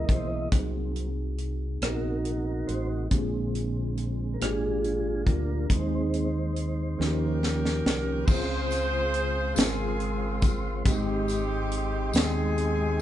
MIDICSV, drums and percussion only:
0, 0, Header, 1, 2, 480
1, 0, Start_track
1, 0, Key_signature, -4, "major"
1, 0, Tempo, 860832
1, 292, Time_signature, 6, 3, 24, 8
1, 7258, End_track
2, 0, Start_track
2, 0, Title_t, "Drums"
2, 49, Note_on_c, 9, 36, 78
2, 51, Note_on_c, 9, 42, 46
2, 105, Note_off_c, 9, 36, 0
2, 106, Note_off_c, 9, 42, 0
2, 288, Note_on_c, 9, 42, 78
2, 290, Note_on_c, 9, 36, 97
2, 344, Note_off_c, 9, 42, 0
2, 346, Note_off_c, 9, 36, 0
2, 534, Note_on_c, 9, 42, 44
2, 589, Note_off_c, 9, 42, 0
2, 771, Note_on_c, 9, 42, 41
2, 827, Note_off_c, 9, 42, 0
2, 1013, Note_on_c, 9, 42, 68
2, 1019, Note_on_c, 9, 37, 100
2, 1069, Note_off_c, 9, 42, 0
2, 1075, Note_off_c, 9, 37, 0
2, 1254, Note_on_c, 9, 42, 38
2, 1310, Note_off_c, 9, 42, 0
2, 1497, Note_on_c, 9, 42, 43
2, 1553, Note_off_c, 9, 42, 0
2, 1734, Note_on_c, 9, 42, 73
2, 1736, Note_on_c, 9, 36, 80
2, 1789, Note_off_c, 9, 42, 0
2, 1791, Note_off_c, 9, 36, 0
2, 1979, Note_on_c, 9, 42, 39
2, 2035, Note_off_c, 9, 42, 0
2, 2216, Note_on_c, 9, 42, 43
2, 2272, Note_off_c, 9, 42, 0
2, 2460, Note_on_c, 9, 42, 76
2, 2467, Note_on_c, 9, 37, 91
2, 2516, Note_off_c, 9, 42, 0
2, 2522, Note_off_c, 9, 37, 0
2, 2700, Note_on_c, 9, 42, 37
2, 2756, Note_off_c, 9, 42, 0
2, 2936, Note_on_c, 9, 36, 76
2, 2940, Note_on_c, 9, 42, 42
2, 2992, Note_off_c, 9, 36, 0
2, 2995, Note_off_c, 9, 42, 0
2, 3178, Note_on_c, 9, 36, 79
2, 3178, Note_on_c, 9, 42, 79
2, 3233, Note_off_c, 9, 42, 0
2, 3234, Note_off_c, 9, 36, 0
2, 3421, Note_on_c, 9, 42, 47
2, 3477, Note_off_c, 9, 42, 0
2, 3659, Note_on_c, 9, 42, 43
2, 3715, Note_off_c, 9, 42, 0
2, 3909, Note_on_c, 9, 38, 45
2, 3964, Note_off_c, 9, 38, 0
2, 4144, Note_on_c, 9, 38, 59
2, 4200, Note_off_c, 9, 38, 0
2, 4268, Note_on_c, 9, 38, 51
2, 4324, Note_off_c, 9, 38, 0
2, 4385, Note_on_c, 9, 38, 81
2, 4440, Note_off_c, 9, 38, 0
2, 4615, Note_on_c, 9, 36, 108
2, 4615, Note_on_c, 9, 49, 96
2, 4616, Note_on_c, 9, 54, 52
2, 4671, Note_off_c, 9, 36, 0
2, 4671, Note_off_c, 9, 49, 0
2, 4671, Note_off_c, 9, 54, 0
2, 4855, Note_on_c, 9, 54, 44
2, 4860, Note_on_c, 9, 42, 52
2, 4910, Note_off_c, 9, 54, 0
2, 4916, Note_off_c, 9, 42, 0
2, 5095, Note_on_c, 9, 42, 53
2, 5150, Note_off_c, 9, 42, 0
2, 5331, Note_on_c, 9, 54, 79
2, 5339, Note_on_c, 9, 42, 92
2, 5345, Note_on_c, 9, 38, 113
2, 5387, Note_off_c, 9, 54, 0
2, 5395, Note_off_c, 9, 42, 0
2, 5401, Note_off_c, 9, 38, 0
2, 5576, Note_on_c, 9, 42, 41
2, 5631, Note_off_c, 9, 42, 0
2, 5810, Note_on_c, 9, 54, 60
2, 5812, Note_on_c, 9, 36, 83
2, 5817, Note_on_c, 9, 42, 51
2, 5866, Note_off_c, 9, 54, 0
2, 5868, Note_off_c, 9, 36, 0
2, 5872, Note_off_c, 9, 42, 0
2, 6052, Note_on_c, 9, 54, 50
2, 6053, Note_on_c, 9, 36, 103
2, 6053, Note_on_c, 9, 42, 90
2, 6108, Note_off_c, 9, 54, 0
2, 6109, Note_off_c, 9, 36, 0
2, 6109, Note_off_c, 9, 42, 0
2, 6291, Note_on_c, 9, 54, 49
2, 6297, Note_on_c, 9, 42, 50
2, 6347, Note_off_c, 9, 54, 0
2, 6353, Note_off_c, 9, 42, 0
2, 6532, Note_on_c, 9, 42, 55
2, 6588, Note_off_c, 9, 42, 0
2, 6766, Note_on_c, 9, 54, 78
2, 6774, Note_on_c, 9, 42, 77
2, 6780, Note_on_c, 9, 38, 107
2, 6822, Note_off_c, 9, 54, 0
2, 6830, Note_off_c, 9, 42, 0
2, 6836, Note_off_c, 9, 38, 0
2, 7013, Note_on_c, 9, 42, 44
2, 7068, Note_off_c, 9, 42, 0
2, 7258, End_track
0, 0, End_of_file